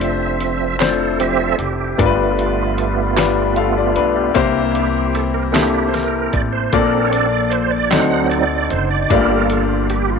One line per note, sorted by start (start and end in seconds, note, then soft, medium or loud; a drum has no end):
0.00 1.55 F1 medium
0.00 0.76 F3 soft
0.00 4.33 F3 medium
0.00 0.70 A3 medium
0.00 0.70 C4 medium
0.00 0.76 C4 soft
0.00 1.97 C4 medium
0.00 0.71 D4 medium
0.00 1.96 D4 medium
0.00 0.74 F4 medium
0.00 0.71 C5 medium
0.00 0.77 E5 soft
0.00 closed hi-hat soft
0.40 closed hi-hat soft
0.79 1.89 A3 medium
0.79 1.89 C4 medium
0.79 1.89 D4 medium
0.79 0.86 E4 soft
0.79 1.21 A4 loud
0.79 1.90 C5 medium
0.79 snare medium
0.79 clap medium
0.79 closed hi-hat medium
0.87 1.93 F4 soft
1.20 1.56 F3 soft
1.20 1.56 C4 soft
1.20 1.40 G4 medium
1.20 1.56 E5 soft
1.20 closed hi-hat soft
1.39 1.60 A4 medium
1.59 1.95 F1 medium
1.59 2.00 G4 medium
1.59 closed hi-hat soft
1.98 3.93 G1 loud
1.98 3.13 G2 medium
1.98 6.69 G3 medium
1.98 3.08 G3 medium
1.98 4.32 A3 soft
1.98 3.08 B3 medium
1.98 4.32 B3 soft
1.98 4.34 B3 medium
1.98 4.34 D4 medium
1.98 3.08 D4 medium
1.98 4.33 F4 medium
1.98 3.08 F4 medium
1.98 2.05 A#4 medium
1.98 kick medium
1.98 closed hi-hat medium
2.06 3.11 B4 medium
2.39 closed hi-hat soft
2.78 closed hi-hat soft
3.16 4.26 G3 medium
3.16 3.57 B3 medium
3.16 3.57 D4 medium
3.16 3.57 F4 medium
3.16 3.57 B4 medium
3.16 snare medium
3.16 clap loud
3.16 closed hi-hat medium
3.56 3.76 A4 medium
3.56 3.76 F5 medium
3.56 closed hi-hat soft
3.78 3.96 F4 medium
3.78 3.96 D5 medium
3.95 4.32 B1 medium
3.95 4.15 D4 medium
3.95 4.15 B4 medium
3.95 closed hi-hat soft
4.16 4.54 B3 soft
4.16 4.34 G4 medium
4.34 6.30 C2 medium
4.34 5.50 C3 medium
4.34 6.71 E3 medium
4.34 5.45 A#3 medium
4.34 4.88 A#3 soft
4.34 5.45 C4 medium
4.34 6.71 C4 medium
4.34 4.88 D4 soft
4.34 5.45 E4 medium
4.34 4.89 E4 soft
4.34 5.45 G4 medium
4.34 5.45 C5 medium
4.34 kick medium
4.34 closed hi-hat medium
4.75 5.16 G4 medium
4.75 closed hi-hat soft
5.15 5.24 A4 medium
5.15 closed hi-hat soft
5.34 5.43 A#4 medium
5.52 6.63 A#3 medium
5.52 5.89 A#3 soft
5.52 6.63 C4 medium
5.52 5.90 D4 soft
5.52 6.63 E4 medium
5.52 5.90 E4 medium
5.52 5.87 G4 medium
5.52 6.63 G4 medium
5.52 6.64 A4 medium
5.52 snare loud
5.52 clap loud
5.52 closed hi-hat medium
5.87 5.95 C5 medium
5.94 6.35 A#4 medium
5.94 snare soft
5.94 closed hi-hat soft
6.33 6.70 A1 medium
6.33 6.42 D5 medium
6.33 kick medium
6.33 closed hi-hat soft
6.53 6.74 C5 medium
6.72 7.88 A#1 medium
6.72 7.88 A#2 medium
6.72 7.91 F3 medium
6.72 7.82 A#3 medium
6.72 7.91 A#3 medium
6.72 7.27 C4 soft
6.72 7.82 D4 medium
6.72 7.91 D4 medium
6.72 7.28 D4 soft
6.72 7.83 F4 medium
6.72 7.83 A4 medium
6.72 7.27 A4 soft
6.72 7.07 A#4 medium
6.72 7.83 D5 medium
6.72 kick loud
6.72 closed hi-hat medium
7.07 7.14 C#5 medium
7.07 7.53 D5 medium
7.13 closed hi-hat soft
7.50 7.72 C5 medium
7.50 closed hi-hat soft
7.71 7.92 D5 medium
7.90 8.72 D2 medium
7.90 9.06 D3 soft
7.90 9.10 D3 medium
7.90 8.44 F#3 soft
7.90 9.09 F#3 medium
7.90 9.00 C4 medium
7.90 9.10 C4 medium
7.90 8.45 C4 soft
7.90 9.01 D#4 medium
7.90 9.09 D#4 medium
7.90 8.45 D#4 soft
7.90 9.01 F#4 soft
7.90 9.01 A4 medium
7.90 9.01 D5 medium
7.90 8.28 F#5 medium
7.90 snare medium
7.90 clap loud
7.90 closed hi-hat medium
8.30 8.72 D5 medium
8.30 closed hi-hat soft
8.70 9.07 F#1 medium
8.70 8.89 C5 medium
8.70 closed hi-hat soft
8.91 9.11 D5 medium
9.10 10.19 G1 loud
9.10 10.19 G2 medium
9.10 10.19 F3 medium
9.10 10.19 G3 medium
9.10 9.17 A3 medium
9.10 9.65 A#3 soft
9.10 10.19 D4 medium
9.10 10.19 F4 medium
9.10 9.50 F4 soft
9.10 10.19 G4 medium
9.10 9.65 A4 medium
9.10 9.52 A#4 medium
9.10 10.19 D5 medium
9.10 kick loud
9.10 closed hi-hat medium
9.16 10.19 A#3 medium
9.50 9.88 F4 medium
9.50 closed hi-hat soft
9.90 10.11 G4 medium
9.90 closed hi-hat soft
10.10 10.19 F4 medium